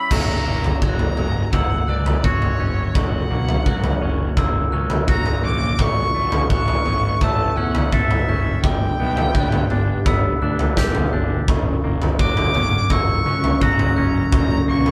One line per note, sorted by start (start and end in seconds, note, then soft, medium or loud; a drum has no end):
0.00 0.11 G3 medium
0.00 0.11 C#4 medium
0.00 0.11 E4 medium
0.00 0.12 B5 medium
0.00 0.11 E6 medium
0.10 0.37 F#1 medium
0.10 5.75 F#3 medium
0.10 0.81 F#3 medium
0.10 5.75 F#4 medium
0.10 5.75 A#4 medium
0.10 0.81 A#5 medium
0.10 0.82 C#6 medium
0.10 kick loud
0.10 floor tom medium
0.10 crash loud
0.46 0.72 F#1 medium
0.46 1.53 A#3 medium
0.64 floor tom medium
0.82 1.08 F#1 medium
0.82 2.60 F#3 medium
0.82 1.49 A#5 medium
0.82 1.53 F#6 medium
0.82 kick loud
0.99 floor tom medium
1.17 1.43 F#1 medium
1.17 mid tom medium
1.53 1.79 F#1 medium
1.53 3.29 A#3 medium
1.53 1.90 F#5 medium
1.53 1.88 E6 medium
1.53 kick loud
1.53 floor tom medium
1.88 2.14 C#2 medium
1.88 2.26 D5 medium
1.88 2.59 F#6 medium
2.06 floor tom medium
2.24 2.50 F#1 medium
2.24 4.02 F#4 medium
2.24 2.97 C#5 medium
2.24 kick loud
2.24 mid tom medium
2.42 floor tom medium
2.60 2.86 F#1 medium
2.60 4.01 C#4 soft
2.60 2.95 G6 medium
2.95 3.21 F#1 medium
2.95 3.65 F#3 medium
2.95 4.37 F#5 medium
2.95 3.66 C#6 medium
2.95 kick loud
2.95 floor tom medium
3.31 3.56 B1 medium
3.31 4.36 A#3 medium
3.49 floor tom medium
3.66 3.92 C#2 medium
3.66 5.44 F#3 medium
3.66 4.37 F#6 medium
3.66 kick medium
3.84 floor tom medium
4.02 4.28 F#1 medium
4.02 4.72 C#4 medium
4.37 4.63 F#1 medium
4.37 5.79 A#3 medium
4.37 4.73 E6 medium
4.37 kick loud
4.37 floor tom medium
4.72 4.99 C#2 medium
4.72 5.43 C#4 medium
4.72 5.44 F#6 medium
4.90 floor tom medium
5.08 5.34 E1 medium
5.08 5.80 F#4 medium
5.08 5.42 A#5 loud
5.08 kick loud
5.08 mid tom medium
5.26 floor tom medium
5.43 5.70 A#1 medium
5.43 5.79 C#4 medium
5.43 5.82 D6 medium
5.43 5.79 G6 medium
5.79 6.05 A1 medium
5.79 7.57 A2 medium
5.79 8.61 A3 medium
5.79 8.61 A4 medium
5.79 8.61 E5 medium
5.79 6.50 C#6 medium
5.79 6.51 C#6 loud
5.79 kick loud
5.79 floor tom medium
6.15 6.41 A1 medium
6.15 7.20 A3 medium
6.32 floor tom medium
6.50 6.76 A1 medium
6.50 8.28 E3 medium
6.50 7.24 C#6 loud
6.50 7.21 F#6 medium
6.50 kick medium
6.68 floor tom medium
6.86 7.12 A1 medium
6.86 7.56 C#4 medium
6.86 mid tom medium
7.21 7.47 A1 medium
7.21 8.64 A3 medium
7.21 7.58 A5 medium
7.21 7.57 E6 medium
7.21 kick loud
7.21 floor tom medium
7.57 7.83 E2 medium
7.57 8.28 C#4 medium
7.57 7.94 F#5 medium
7.57 8.28 F#6 medium
7.75 floor tom medium
7.92 8.18 A1 medium
7.92 8.64 A4 medium
7.92 8.62 E5 medium
7.92 kick loud
7.92 mid tom medium
8.11 floor tom medium
8.28 8.54 F#1 medium
8.28 8.64 C#4 medium
8.28 8.64 G6 medium
8.63 8.89 G1 medium
8.63 10.42 G2 medium
8.63 11.45 G3 medium
8.63 11.45 G4 medium
8.63 11.45 B4 medium
8.63 11.45 D5 medium
8.63 10.01 G5 medium
8.63 9.35 D6 medium
8.63 kick loud
8.63 floor tom medium
8.99 9.25 B1 medium
8.99 10.05 B3 medium
9.17 floor tom medium
9.35 9.61 D2 medium
9.35 11.13 G3 medium
9.35 10.06 F#6 medium
9.35 kick loud
9.52 floor tom medium
9.52 mid tom medium
9.70 9.96 G1 medium
9.70 10.41 D4 medium
9.70 mid tom medium
10.06 10.32 G1 medium
10.06 11.48 B3 medium
10.06 10.41 E6 medium
10.06 kick loud
10.06 floor tom medium
10.42 10.67 D2 medium
10.42 11.12 D4 medium
10.42 11.13 F#6 medium
10.59 floor tom medium
10.77 11.03 E1 medium
10.77 11.48 G4 medium
10.77 kick medium
10.77 snare medium
10.95 floor tom medium
11.13 11.39 G1 medium
11.13 11.48 D4 medium
11.13 11.48 G6 medium
11.48 11.74 F#1 medium
11.48 13.26 F#2 medium
11.48 14.91 F#3 medium
11.48 14.91 C#4 medium
11.48 14.91 F#4 medium
11.48 14.91 A#4 medium
11.48 12.19 C#6 medium
11.48 kick loud
11.48 floor tom medium
11.84 12.09 F#1 medium
11.84 12.89 A#3 medium
12.02 floor tom medium
12.19 12.45 F#1 medium
12.19 13.97 F#3 medium
12.19 12.93 D6 loud
12.19 12.90 F#6 medium
12.19 kick loud
12.37 floor tom medium
12.54 12.80 F#1 medium
12.54 13.26 C#4 medium
12.54 mid tom medium
12.90 13.16 F#1 medium
12.90 14.67 A#3 medium
12.90 13.64 C#6 loud
12.90 13.26 E6 medium
12.90 kick loud
12.90 floor tom medium
13.26 13.52 C#2 medium
13.26 13.97 C#4 medium
13.26 13.97 F#6 medium
13.44 floor tom medium
13.61 13.87 F#1 medium
13.61 14.91 F#4 medium
13.61 14.33 A#5 medium
13.61 kick loud
13.61 mid tom medium
13.79 floor tom medium
13.96 14.23 F#1 medium
13.96 14.91 C#4 medium
13.96 14.32 G6 medium
14.32 14.58 F#1 medium
14.32 14.91 F#2 medium
14.32 14.66 A#5 medium
14.32 14.91 C#6 medium
14.32 kick loud
14.32 floor tom medium
14.68 14.91 B1 medium
14.68 14.91 A#3 medium
14.68 14.91 C#6 medium
14.86 floor tom medium